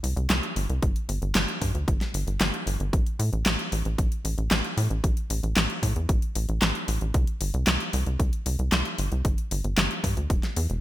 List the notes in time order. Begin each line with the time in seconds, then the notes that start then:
0.03 C2, open hi-hat
0.16 C2, closed hi-hat
0.30 C2, snare, clap, closed hi-hat
0.43 closed hi-hat
0.56 G1, open hi-hat
0.69 C2, closed hi-hat
0.83 G1, kick, closed hi-hat
0.96 closed hi-hat
1.09 G1, open hi-hat
1.22 G1, closed hi-hat
1.35 G1, snare, clap, closed hi-hat
1.48 closed hi-hat
1.61 G2, kick, open hi-hat
1.75 D2, closed hi-hat
1.88 G1, kick, closed hi-hat
2.01 snare, closed hi-hat
2.14 G1, open hi-hat
2.27 G1, closed hi-hat
2.40 G1, snare, clap, closed hi-hat
2.54 closed hi-hat
2.67 G1, open hi-hat
2.80 G1, closed hi-hat
2.93 A1, kick, closed hi-hat
3.06 closed hi-hat
3.19 A2, open hi-hat
3.33 A1, closed hi-hat
3.46 A1, snare, clap, closed hi-hat
3.59 closed hi-hat
3.72 A1, open hi-hat
3.85 A1, closed hi-hat
3.98 A1, kick, closed hi-hat
4.12 closed hi-hat
4.25 A1, open hi-hat
4.38 A1, closed hi-hat
4.51 A1, snare, clap, closed hi-hat
4.64 closed hi-hat
4.77 A2, open hi-hat
4.90 A1, closed hi-hat
5.04 A1, kick, closed hi-hat
5.17 closed hi-hat
5.30 A1, open hi-hat
5.43 A1, closed hi-hat
5.56 A1, snare, clap, closed hi-hat
5.70 closed hi-hat
5.83 A2, kick, open hi-hat
5.96 E2, closed hi-hat
6.09 A1, kick, closed hi-hat
6.22 closed hi-hat
6.35 A1, open hi-hat
6.49 A1, closed hi-hat
6.62 A1, snare, clap, closed hi-hat
6.75 closed hi-hat
6.88 A1, open hi-hat
7.01 A1, closed hi-hat
7.14 C2, kick, closed hi-hat
7.27 closed hi-hat
7.41 G1, open hi-hat
7.54 C2, closed hi-hat
7.67 C2, snare, clap, closed hi-hat
7.80 closed hi-hat
7.93 C2, open hi-hat
8.06 C2, closed hi-hat
8.20 C2, kick, closed hi-hat
8.33 closed hi-hat
8.46 C2, open hi-hat
8.59 C2, closed hi-hat
8.72 C2, snare, clap, closed hi-hat
8.85 closed hi-hat
8.98 G1, open hi-hat
9.12 C2, closed hi-hat
9.25 G1, kick, closed hi-hat
9.38 closed hi-hat
9.51 G1, open hi-hat
9.64 G1, closed hi-hat
9.77 G1, snare, clap, closed hi-hat
9.91 closed hi-hat
10.04 G2, kick, open hi-hat
10.17 D2, closed hi-hat
10.30 E1, kick, closed hi-hat
10.43 snare, closed hi-hat
10.56 E2, open hi-hat
10.70 E1, closed hi-hat